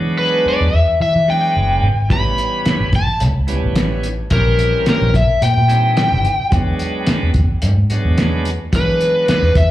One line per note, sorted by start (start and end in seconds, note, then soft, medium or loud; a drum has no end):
0.00 0.33 E3 medium
0.00 0.69 F#3 medium
0.00 0.69 G#3 medium
0.00 0.70 B3 medium
0.00 0.70 D4 medium
0.19 0.45 B4 medium
0.46 0.75 D5 medium
0.46 muted fingered electric bass stroke soft
0.61 0.70 E2 medium
0.74 0.85 E2 medium
0.74 1.01 E5 medium
1.00 1.12 E3 loud
1.00 1.28 E5 medium
1.16 1.56 E3 medium
1.28 1.88 F#3 medium
1.28 1.88 G#3 medium
1.28 1.88 B3 medium
1.28 1.88 D4 medium
1.28 2.09 G5 medium
1.56 1.81 F#1 medium
1.83 2.08 G#1 medium
2.09 2.31 A1 medium
2.09 2.89 E3 medium
2.09 2.90 G3 medium
2.09 2.90 B3 medium
2.09 2.90 C#4 medium
2.09 2.92 B5 medium
2.09 kick loud
2.09 closed hi-hat medium
2.38 closed hi-hat medium
2.66 muted fingered electric bass stroke soft
2.66 snare loud
2.66 closed hi-hat medium
2.80 2.90 A1 medium
2.93 3.05 A1 medium
2.93 3.21 A5 medium
2.93 kick medium
2.93 closed hi-hat medium
3.09 muted fingered electric bass stroke soft
3.20 3.33 C#2 medium
3.20 closed hi-hat medium
3.36 3.57 C#2 medium
3.47 4.08 E3 medium
3.47 4.08 G3 medium
3.47 4.08 B3 medium
3.47 4.09 C#4 medium
3.47 closed hi-hat medium
3.64 4.16 A1 medium
3.76 snare loud
3.76 closed hi-hat medium
4.03 closed hi-hat medium
4.30 4.74 A#1 medium
4.30 5.11 E3 medium
4.30 5.11 G3 medium
4.30 5.11 C4 medium
4.30 5.12 C#4 medium
4.30 4.85 A#4 medium
4.30 kick loud
4.30 closed hi-hat medium
4.59 closed hi-hat medium
4.86 5.14 A#4 medium
4.86 muted fingered electric bass stroke soft
4.86 snare loud
4.86 closed hi-hat medium
5.02 5.11 A#1 medium
5.14 5.25 A#1 medium
5.14 5.42 E5 medium
5.14 kick medium
5.14 closed hi-hat medium
5.42 5.53 A#2 loud
5.42 5.96 G5 medium
5.42 closed hi-hat medium
5.57 6.13 A#2 medium
5.68 6.29 E3 medium
5.68 6.29 G3 medium
5.68 6.29 C4 medium
5.68 6.29 D#4 medium
5.68 closed hi-hat medium
5.97 6.51 G5 medium
5.97 snare loud
5.97 closed hi-hat medium
6.12 6.21 G1 medium
6.25 closed hi-hat medium
6.39 muted fingered electric bass stroke soft
6.50 6.73 E2 medium
6.50 7.31 F#3 medium
6.50 7.31 G#3 medium
6.50 7.32 B3 medium
6.50 7.32 D4 medium
6.50 kick loud
6.50 closed hi-hat medium
6.79 closed hi-hat medium
7.07 muted fingered electric bass stroke soft
7.07 snare loud
7.07 closed hi-hat medium
7.23 7.32 E2 medium
7.34 7.46 E2 medium
7.34 kick medium
7.34 closed hi-hat medium
7.51 muted fingered electric bass stroke soft
7.62 7.74 G#2 medium
7.62 closed hi-hat medium
7.77 7.99 G#2 medium
7.90 8.50 F#3 medium
7.90 8.50 G#3 medium
7.90 8.50 B3 medium
7.90 8.51 D4 medium
7.90 closed hi-hat medium
8.05 8.57 E2 loud
8.18 snare loud
8.18 closed hi-hat medium
8.45 closed hi-hat medium
8.72 9.16 E3 medium
8.72 9.52 F#3 medium
8.72 9.53 G#3 medium
8.72 9.53 B3 medium
8.72 9.53 D4 medium
8.72 9.28 B4 medium
8.72 kick loud
8.72 closed hi-hat medium
9.01 closed hi-hat medium
9.28 9.56 B4 medium
9.28 muted fingered electric bass stroke soft
9.28 snare loud
9.28 closed hi-hat medium
9.43 9.52 E2 medium
9.55 9.67 E2 loud
9.55 9.71 E5 medium
9.55 kick medium
9.55 closed hi-hat medium